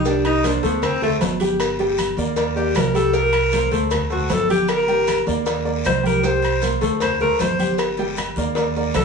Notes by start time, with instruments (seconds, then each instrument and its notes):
Already playing: upright bass C2
0.05 grand piano G3 G4 G5, alto saxophone D4, cowbell, long guiro, maracas
0.25 alto saxophone D#4, cowbell, high conga, low agogo, claves, maracas
0.43 grand piano A#3 A#4 C5, alto saxophone D4, cowbell, high conga, low timbale, low agogo, short guiro, maracas
0.63 upright bass D2, grand piano A3 A4 C5, alto saxophone B3, cowbell, high conga, short guiro, maracas
0.82 alto saxophone C4, cowbell, high conga, low conga, low agogo, long guiro, claves, maracas
1.02 grand piano A3 A4 C5, alto saxophone A3, high conga, low conga, maracas
1.21 upright bass G1, cowbell, high conga, low timbale, low agogo, short guiro, maracas
1.40 grand piano G3 G4 G5, high conga, low agogo, short guiro, maracas
1.60 cowbell, low agogo, long guiro, claves, maracas
1.79 grand piano G3 G4 G5, cowbell, high conga, maracas
1.98 cowbell, high conga, low timbale, low agogo, short guiro, claves, maracas
2.17 upright bass D#2, grand piano A#3 A#4 D5, high conga, short guiro, maracas
2.36 grand piano A#3 A#4 D5, cowbell, high conga, low agogo, long guiro, maracas
2.56 grand piano A#3 A#4 D5, alto saxophone G4, high conga, maracas
2.75 upright bass C2, alto saxophone A#4, cowbell, high conga, low timbale, low agogo, short guiro, claves, maracas
2.94 grand piano G3 G4 G5, alto saxophone A4, low agogo, short guiro, maracas
3.13 grand piano G3 G4 G5, alto saxophone A#4, cowbell, high conga, long guiro, maracas
3.33 cowbell, high conga, low agogo, claves, maracas
3.52 grand piano A#3 A#4 C5, cowbell, high conga, low timbale, low agogo, short guiro, maracas
3.71 upright bass D2, grand piano A3 A4 C5, cowbell, high conga, short guiro, maracas
3.91 cowbell, high conga, low conga, low agogo, long guiro, claves, maracas
4.10 grand piano A3 A4 C5, alto saxophone F#4, high conga, low conga, maracas
4.29 upright bass G1, alto saxophone A4, cowbell, high conga, low timbale, low agogo, short guiro, maracas
4.49 grand piano G3 G4 G5, alto saxophone G4, high conga, low agogo, short guiro, maracas
4.68 alto saxophone A#4, cowbell, low agogo, long guiro, claves, maracas
4.88 grand piano G3 G4 G5, cowbell, high conga, maracas
5.07 cowbell, high conga, low timbale, low agogo, short guiro, claves, maracas
5.26 upright bass D#2, grand piano A#3 A#4 D5, high conga, short guiro, maracas
5.46 grand piano A#3 A#4 D5, cowbell, high conga, low agogo, long guiro, maracas
5.65 grand piano A#3 A#4 D5, high conga, maracas
5.85 upright bass C2, alto saxophone C5, cowbell, high conga, low timbale, low agogo, short guiro, claves, maracas
6.03 grand piano G3 G4 G5, alto saxophone A#4, high conga, low agogo, short guiro, maracas
6.23 grand piano G3 G4 G5, alto saxophone C5, cowbell, long guiro, maracas
6.42 cowbell, high conga, low agogo, claves, maracas
6.62 grand piano A#3 A#4 C5, cowbell, high conga, low timbale, low agogo, short guiro, maracas
6.81 upright bass D2, grand piano A3 A4 C5, cowbell, high conga, short guiro, maracas
7.00 alto saxophone C5, cowbell, high conga, low conga, low agogo, long guiro, claves, maracas
7.20 grand piano A3 A4 C5, alto saxophone A#4, high conga, low conga, maracas
7.39 upright bass G1, alto saxophone C5, cowbell, high conga, low timbale, low agogo, short guiro, maracas
7.59 grand piano G3 G4 G5, high conga, low agogo, short guiro, maracas
7.78 cowbell, high conga, low agogo, long guiro, claves, maracas
7.97 grand piano G3 G4 G5, cowbell, high conga, maracas
8.17 cowbell, high conga, low timbale, low agogo, short guiro, claves, maracas
8.36 upright bass D#2, grand piano A#3 A#4 D5, high conga, short guiro, maracas
8.55 grand piano A#3 A#4 D5, cowbell, high conga, low agogo, long guiro, maracas
8.76 grand piano A#3 A#4 D5, high conga, maracas
8.94 upright bass C2, alto saxophone A4, cowbell, high conga, low timbale, low agogo, short guiro, claves, maracas